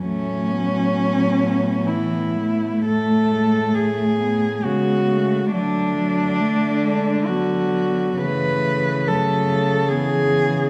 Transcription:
X:1
M:3/4
L:1/8
Q:1/4=68
K:A
V:1 name="Cello"
C4 E2 | A2 G2 F2 | D4 F2 | B2 A2 G2 |]
V:2 name="Cello"
A, B,4- B, | A, G, A, B, B, A, | A,4 B,2 | A,2 A,2 B,2 |]
V:3 name="Cello" clef=bass
F,4 E, A,- | A,4 G,2 | F, F, A, G, F,2 | E,2 F,2 E,2 |]
V:4 name="Cello" clef=bass
A,,6 | A,,4 C,2 | D,6 | C,6 |]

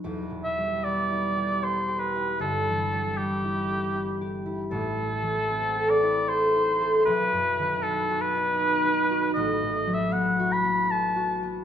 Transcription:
X:1
M:3/4
L:1/16
Q:1/4=78
K:Em
V:1 name="Oboe"
z2 e2 d4 c2 B2 | A4 G6 z2 | A6 d2 c4 | B4 A2 B6 |
^d3 e f2 b2 a3 z |]
V:2 name="Harp"
(3[E,,,E,,B,]2 B,,2 G,2 (3B,2 E2 G2 (3B2 G2 E2 | (3[G,,,G,,]2 E,2 G,2 (3B,2 E2 G2 (3E2 G2 E2 | (3[A,,,A,,]2 A,2 E,2 (3C2 A2 E2 (3A2 E2 A2 | (3B,,,2 F,,2 ^D,2 (3B,2 F2 ^D2 (3F2 D2 F2 |
(3A,,,2 A,,2 F,2 (3B,2 F2 B,2 (3B2 F2 B,2 |]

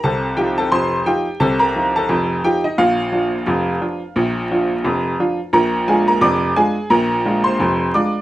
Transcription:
X:1
M:2/4
L:1/16
Q:"Swing 16ths" 1/4=87
K:Bb
V:1 name="Upright piano"
[Aa]2 [Gg] [Aa] [cc']2 [Gg]2 | [Aa] [Bb]2 [Aa]3 [Gg] [Ee] | [Ff]8- | [Ff]2 z6 |
[Bb]2 [_A_a] [Bb] [dd']2 [Aa]2 | [Bb]3 [cc']3 [dd']2 |]
V:2 name="Upright piano" clef=bass
[C,,C,]2 [F,EF]2 [F,,,F,,]2 [F,EF]2 | [C,,C,]2 [F,EF]2 [F,,,F,,]2 [F,EF]2 | [B,,,B,,]2 [F,DF]2 [F,,,F,,]2 [F,DF]2 | [B,,,B,,]2 [F,DF]2 [F,,,F,,]2 [F,DF]2 |
[B,,,B,,]2 [_A,DF]2 [F,,,F,,]2 [A,DF]2 | [B,,,B,,]2 [_A,DF]2 [F,,,F,,]2 [A,DF]2 |]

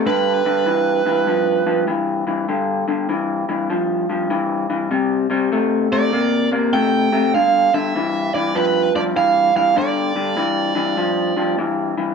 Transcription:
X:1
M:4/4
L:1/8
Q:"Swing" 1/4=99
K:Gmix
V:1 name="Overdriven electric guitar"
B6 z2 | z8 | z3 d2 z g2 | f e2 d B d f f |
d6 z2 |]
V:2 name="Clean electric guitar" clef=bass
[G,,D,] [G,,D,] [G,,E,] [G,,E,] [G,,F,] [G,,F,] [G,,E,] [G,,E,] | [G,,D,] [G,,D,] [G,,E,] [G,,E,] [G,,F,] [G,,F,] [G,,E,] [G,,E,] | [C,G,] [C,G,] [C,A,] [C,A,] [C,_B,] [C,B,] [C,A,] [C,A,] | [G,,D,] [G,,D,] [G,,E,] [G,,E,] [G,,F,] [G,,F,] [G,,E,] [G,,E,] |
[G,,D,] [G,,D,] [G,,E,] [G,,E,] [G,,F,] [G,,F,] [G,,E,] [G,,E,] |]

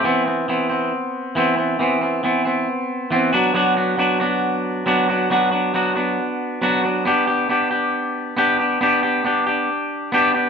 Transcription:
X:1
M:4/4
L:1/8
Q:1/4=137
K:Clyd
V:1 name="Clean electric guitar"
[E,B,C] [B,C] [E,B,C] [B,C]3 [E,B,C] [B,C] | [E,B,C] [B,C] [E,B,C] [B,C]3 [E,B,C] [F,B,DF] | [F,B,DF] [B,DF] [F,B,DF] [B,DF]3 [F,B,DF] [B,DF] | [F,B,DF] [B,DF] [F,B,DF] [B,DF]3 [F,B,DF] [B,DF] |
[B,DG] [DG] [B,DG] [DG]3 [B,DG] [DG] | [B,DG] [DG] [B,DG] [DG]3 [B,DG] [DG] |]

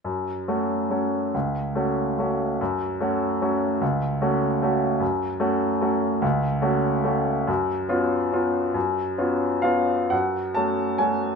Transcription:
X:1
M:3/4
L:1/8
Q:1/4=143
K:F#m
V:1 name="Grand piano"
F,,2 [A,CF]2 [A,CF]2 | C,,2 [A,CF]2 [A,CF]2 | F,,2 [A,CF]2 [A,CF]2 | C,,2 [A,CF]2 [A,CF]2 |
F,,2 [A,CF]2 [A,CF]2 | C,,2 [A,CF]2 [A,CF]2 | F,,2 [B,C^E]2 [B,CE]2 | F,,2 [B,C^E]2 [B,CE^e]2 |
[F,,f]2 [A,CFa]2 [A,CFg]2 |]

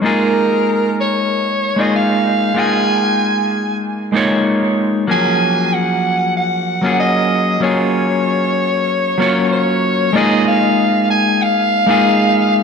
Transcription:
X:1
M:4/4
L:1/16
Q:1/4=95
K:A#phr
V:1 name="Soprano saxophone"
A6 c4- c d e4 | g8 z8 | g4 f4 f4 d4 | c12 c4 |
d2 e4 g2 e8 |]
V:2 name="Clean electric guitar"
[G,A,DEG]8- [G,A,DEG]3 [G,A,DEG]4- [G,A,DEG] | [G,A,DEG]8- [G,A,DEG]2 [G,A,DEc]6 | [E,F,A,CG]8- [E,F,A,CG]3 [F,A,CEG]4- [F,A,CEG] | [F,A,CEG]8- [F,A,CEG]2 [F,A,CEc]6 |
[G,A,DEG]8- [G,A,DEG]3 [G,A,DEG]4- [G,A,DEG] |]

